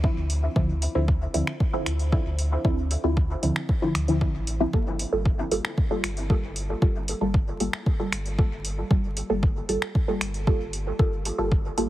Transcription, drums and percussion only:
0.04 kick
0.30 open hi-hat
0.56 kick
0.82 open hi-hat
1.08 kick
1.34 open hi-hat
1.47 finger snap
1.60 kick
1.86 finger snap, open hi-hat
2.00 open hi-hat
2.12 kick
2.39 open hi-hat
2.65 kick
2.91 open hi-hat
3.17 kick
3.43 open hi-hat
3.56 finger snap
3.69 kick
3.95 finger snap, open hi-hat
4.08 open hi-hat
4.21 kick
4.47 open hi-hat
4.73 kick
4.99 open hi-hat
5.25 kick
5.52 open hi-hat
5.65 finger snap
5.78 kick
6.04 finger snap, open hi-hat
6.17 open hi-hat
6.30 kick
6.56 open hi-hat
6.82 kick
7.08 open hi-hat
7.34 kick
7.60 open hi-hat
7.73 finger snap
7.86 kick
8.12 finger snap, open hi-hat
8.26 open hi-hat
8.38 kick
8.65 open hi-hat
8.91 kick
9.17 open hi-hat
9.43 kick
9.69 open hi-hat
9.82 finger snap
9.95 kick
10.21 finger snap, open hi-hat
10.34 open hi-hat
10.47 kick
10.73 open hi-hat
10.99 kick
11.25 open hi-hat
11.52 kick
11.78 open hi-hat

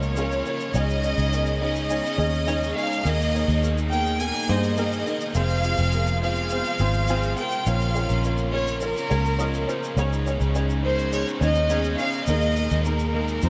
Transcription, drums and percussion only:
0.03 shaker
0.16 shaker
0.32 shaker
0.46 shaker
0.60 shaker
0.74 shaker
0.90 shaker
1.03 shaker
1.18 shaker
1.33 shaker
1.46 shaker
1.75 shaker
1.90 shaker
2.05 shaker
2.20 shaker
2.34 shaker
2.48 shaker
2.63 shaker
2.78 shaker
2.92 shaker
3.06 shaker
3.21 shaker
3.35 shaker
3.50 shaker
3.64 shaker
3.78 shaker
3.93 shaker
4.06 shaker
4.20 shaker
4.35 shaker
4.49 shaker
4.63 shaker
4.77 shaker
4.92 shaker
5.06 shaker
5.21 shaker
5.35 shaker
5.49 shaker
5.64 shaker
5.77 shaker
5.92 shaker
6.06 shaker
6.36 shaker
6.50 shaker
6.65 shaker
6.79 shaker
6.93 shaker
7.07 shaker
7.23 shaker
7.37 shaker
7.52 shaker
7.66 shaker
7.81 shaker
7.95 shaker
8.09 shaker
8.24 shaker
8.38 shaker
8.67 shaker
8.81 shaker
8.97 shaker
9.11 shaker
9.25 shaker
9.39 shaker
9.54 shaker
9.69 shaker
9.84 shaker
9.97 shaker
10.13 shaker
10.27 shaker
10.41 shaker
10.55 shaker
10.70 shaker
10.99 shaker
11.13 shaker
11.28 shaker
11.42 shaker
11.55 shaker
11.70 shaker
11.84 shaker
11.98 shaker
12.12 shaker
12.27 shaker
12.41 shaker
12.56 shaker
12.70 shaker
12.85 shaker
12.99 shaker
13.28 shaker
13.42 shaker

